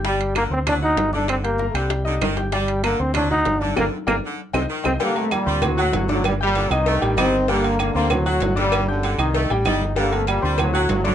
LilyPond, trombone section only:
\new Staff \with { instrumentName = "Trombone section" } { \clef bass \time 4/4 \key g \minor \tempo 4 = 194 r1 | r1 | r1 | r1 |
<d bes>8 <c a>8 <bes, g>4 <a, fis>4 <a, fis>8 <a, fis>8 | <bes, g>8 <bes, g>4 <g, ees>4. <ees c'>4 | <d bes>4 <d bes>8 <d bes>8 <a, fis>4. <bes, g>8~ | <bes, g>8 <fis, d>4 <g, ees>4 r4. |
<d bes>8 <c a>8 <bes, g>4 <a, fis>4 <a, fis>8 <a, fis>8 | }